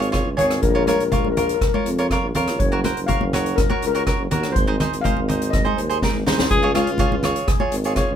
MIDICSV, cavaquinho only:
0, 0, Header, 1, 2, 480
1, 0, Start_track
1, 0, Key_signature, -5, "major"
1, 0, Tempo, 489396
1, 622, Time_signature, 4, 2, 24, 8
1, 8002, End_track
2, 0, Start_track
2, 0, Title_t, "Cavaquinho"
2, 0, Program_c, 0, 24
2, 118, Note_on_c, 0, 65, 68
2, 122, Note_on_c, 0, 68, 42
2, 125, Note_on_c, 0, 73, 69
2, 275, Note_off_c, 0, 65, 0
2, 275, Note_off_c, 0, 68, 0
2, 278, Note_off_c, 0, 73, 0
2, 362, Note_on_c, 0, 73, 66
2, 366, Note_on_c, 0, 68, 59
2, 371, Note_on_c, 0, 65, 53
2, 588, Note_off_c, 0, 65, 0
2, 589, Note_off_c, 0, 68, 0
2, 590, Note_off_c, 0, 73, 0
2, 733, Note_on_c, 0, 73, 77
2, 736, Note_on_c, 0, 70, 64
2, 741, Note_on_c, 0, 65, 61
2, 811, Note_off_c, 0, 65, 0
2, 811, Note_off_c, 0, 70, 0
2, 811, Note_off_c, 0, 73, 0
2, 863, Note_on_c, 0, 73, 89
2, 866, Note_on_c, 0, 70, 62
2, 869, Note_on_c, 0, 65, 64
2, 1008, Note_off_c, 0, 65, 0
2, 1009, Note_off_c, 0, 70, 0
2, 1009, Note_off_c, 0, 73, 0
2, 1097, Note_on_c, 0, 65, 73
2, 1105, Note_on_c, 0, 70, 53
2, 1110, Note_on_c, 0, 73, 81
2, 1247, Note_off_c, 0, 65, 0
2, 1248, Note_off_c, 0, 70, 0
2, 1248, Note_off_c, 0, 73, 0
2, 1343, Note_on_c, 0, 70, 56
2, 1347, Note_on_c, 0, 65, 64
2, 1350, Note_on_c, 0, 73, 56
2, 1560, Note_off_c, 0, 70, 0
2, 1562, Note_off_c, 0, 73, 0
2, 1563, Note_off_c, 0, 65, 0
2, 1706, Note_on_c, 0, 73, 67
2, 1714, Note_on_c, 0, 70, 50
2, 1716, Note_on_c, 0, 65, 52
2, 1850, Note_off_c, 0, 65, 0
2, 1851, Note_off_c, 0, 70, 0
2, 1851, Note_off_c, 0, 73, 0
2, 1949, Note_on_c, 0, 73, 89
2, 1953, Note_on_c, 0, 70, 63
2, 1962, Note_on_c, 0, 65, 66
2, 2020, Note_off_c, 0, 70, 0
2, 2021, Note_off_c, 0, 65, 0
2, 2021, Note_off_c, 0, 73, 0
2, 2074, Note_on_c, 0, 65, 71
2, 2079, Note_on_c, 0, 70, 62
2, 2087, Note_on_c, 0, 73, 76
2, 2216, Note_off_c, 0, 70, 0
2, 2217, Note_off_c, 0, 65, 0
2, 2218, Note_off_c, 0, 73, 0
2, 2309, Note_on_c, 0, 65, 82
2, 2313, Note_on_c, 0, 70, 65
2, 2318, Note_on_c, 0, 73, 72
2, 2523, Note_off_c, 0, 65, 0
2, 2526, Note_off_c, 0, 70, 0
2, 2526, Note_off_c, 0, 73, 0
2, 2665, Note_on_c, 0, 66, 67
2, 2670, Note_on_c, 0, 70, 64
2, 2677, Note_on_c, 0, 73, 67
2, 2737, Note_off_c, 0, 66, 0
2, 2740, Note_off_c, 0, 70, 0
2, 2741, Note_off_c, 0, 73, 0
2, 2785, Note_on_c, 0, 66, 61
2, 2791, Note_on_c, 0, 70, 66
2, 2793, Note_on_c, 0, 72, 69
2, 2932, Note_off_c, 0, 66, 0
2, 2933, Note_off_c, 0, 72, 0
2, 2934, Note_off_c, 0, 70, 0
2, 3019, Note_on_c, 0, 66, 66
2, 3023, Note_on_c, 0, 70, 60
2, 3023, Note_on_c, 0, 73, 79
2, 3167, Note_off_c, 0, 70, 0
2, 3168, Note_off_c, 0, 66, 0
2, 3169, Note_off_c, 0, 73, 0
2, 3270, Note_on_c, 0, 66, 68
2, 3277, Note_on_c, 0, 70, 59
2, 3277, Note_on_c, 0, 73, 75
2, 3485, Note_off_c, 0, 66, 0
2, 3486, Note_off_c, 0, 70, 0
2, 3488, Note_off_c, 0, 73, 0
2, 3624, Note_on_c, 0, 66, 73
2, 3629, Note_on_c, 0, 70, 65
2, 3636, Note_on_c, 0, 73, 61
2, 3769, Note_off_c, 0, 66, 0
2, 3772, Note_off_c, 0, 70, 0
2, 3773, Note_off_c, 0, 73, 0
2, 3870, Note_on_c, 0, 70, 62
2, 3873, Note_on_c, 0, 66, 72
2, 3880, Note_on_c, 0, 73, 66
2, 3940, Note_off_c, 0, 70, 0
2, 3942, Note_off_c, 0, 66, 0
2, 3944, Note_off_c, 0, 73, 0
2, 3988, Note_on_c, 0, 66, 64
2, 3994, Note_on_c, 0, 73, 65
2, 3998, Note_on_c, 0, 70, 50
2, 4133, Note_off_c, 0, 66, 0
2, 4135, Note_off_c, 0, 70, 0
2, 4135, Note_off_c, 0, 73, 0
2, 4228, Note_on_c, 0, 66, 70
2, 4231, Note_on_c, 0, 70, 66
2, 4238, Note_on_c, 0, 73, 65
2, 4443, Note_off_c, 0, 66, 0
2, 4445, Note_off_c, 0, 70, 0
2, 4446, Note_off_c, 0, 73, 0
2, 4584, Note_on_c, 0, 63, 69
2, 4590, Note_on_c, 0, 72, 74
2, 4593, Note_on_c, 0, 68, 63
2, 4657, Note_off_c, 0, 63, 0
2, 4659, Note_off_c, 0, 68, 0
2, 4659, Note_off_c, 0, 72, 0
2, 4708, Note_on_c, 0, 72, 79
2, 4710, Note_on_c, 0, 63, 71
2, 4717, Note_on_c, 0, 68, 63
2, 4852, Note_off_c, 0, 72, 0
2, 4854, Note_off_c, 0, 63, 0
2, 4854, Note_off_c, 0, 68, 0
2, 4944, Note_on_c, 0, 63, 61
2, 4952, Note_on_c, 0, 68, 61
2, 4954, Note_on_c, 0, 72, 80
2, 5091, Note_off_c, 0, 63, 0
2, 5091, Note_off_c, 0, 68, 0
2, 5094, Note_off_c, 0, 72, 0
2, 5184, Note_on_c, 0, 63, 66
2, 5190, Note_on_c, 0, 72, 65
2, 5192, Note_on_c, 0, 68, 47
2, 5401, Note_off_c, 0, 63, 0
2, 5402, Note_off_c, 0, 68, 0
2, 5404, Note_off_c, 0, 72, 0
2, 5538, Note_on_c, 0, 72, 68
2, 5542, Note_on_c, 0, 68, 64
2, 5550, Note_on_c, 0, 63, 57
2, 5686, Note_off_c, 0, 68, 0
2, 5686, Note_off_c, 0, 72, 0
2, 5687, Note_off_c, 0, 63, 0
2, 5782, Note_on_c, 0, 72, 68
2, 5785, Note_on_c, 0, 68, 59
2, 5792, Note_on_c, 0, 63, 61
2, 5855, Note_off_c, 0, 68, 0
2, 5856, Note_off_c, 0, 63, 0
2, 5856, Note_off_c, 0, 72, 0
2, 5911, Note_on_c, 0, 63, 63
2, 5915, Note_on_c, 0, 68, 53
2, 5924, Note_on_c, 0, 70, 57
2, 6053, Note_off_c, 0, 68, 0
2, 6054, Note_off_c, 0, 63, 0
2, 6055, Note_off_c, 0, 70, 0
2, 6145, Note_on_c, 0, 63, 68
2, 6153, Note_on_c, 0, 68, 59
2, 6154, Note_on_c, 0, 72, 85
2, 6361, Note_off_c, 0, 63, 0
2, 6362, Note_off_c, 0, 68, 0
2, 6365, Note_off_c, 0, 72, 0
2, 6499, Note_on_c, 0, 65, 72
2, 6505, Note_on_c, 0, 68, 72
2, 6509, Note_on_c, 0, 73, 76
2, 6573, Note_off_c, 0, 65, 0
2, 6576, Note_off_c, 0, 68, 0
2, 6576, Note_off_c, 0, 73, 0
2, 6620, Note_on_c, 0, 65, 81
2, 6621, Note_on_c, 0, 68, 83
2, 6628, Note_on_c, 0, 73, 75
2, 6766, Note_off_c, 0, 65, 0
2, 6768, Note_off_c, 0, 68, 0
2, 6769, Note_off_c, 0, 73, 0
2, 6859, Note_on_c, 0, 65, 89
2, 6861, Note_on_c, 0, 73, 79
2, 6863, Note_on_c, 0, 68, 75
2, 7005, Note_off_c, 0, 73, 0
2, 7006, Note_off_c, 0, 65, 0
2, 7008, Note_off_c, 0, 68, 0
2, 7098, Note_on_c, 0, 65, 78
2, 7104, Note_on_c, 0, 68, 55
2, 7108, Note_on_c, 0, 73, 92
2, 7316, Note_off_c, 0, 65, 0
2, 7317, Note_off_c, 0, 68, 0
2, 7321, Note_off_c, 0, 73, 0
2, 7454, Note_on_c, 0, 73, 66
2, 7458, Note_on_c, 0, 68, 51
2, 7464, Note_on_c, 0, 65, 54
2, 7602, Note_off_c, 0, 65, 0
2, 7602, Note_off_c, 0, 68, 0
2, 7603, Note_off_c, 0, 73, 0
2, 7701, Note_on_c, 0, 73, 73
2, 7704, Note_on_c, 0, 68, 60
2, 7709, Note_on_c, 0, 65, 65
2, 7773, Note_off_c, 0, 68, 0
2, 7774, Note_off_c, 0, 65, 0
2, 7774, Note_off_c, 0, 73, 0
2, 7809, Note_on_c, 0, 65, 57
2, 7815, Note_on_c, 0, 68, 53
2, 7818, Note_on_c, 0, 73, 62
2, 7960, Note_off_c, 0, 73, 0
2, 7961, Note_off_c, 0, 65, 0
2, 7961, Note_off_c, 0, 68, 0
2, 8002, End_track
0, 0, End_of_file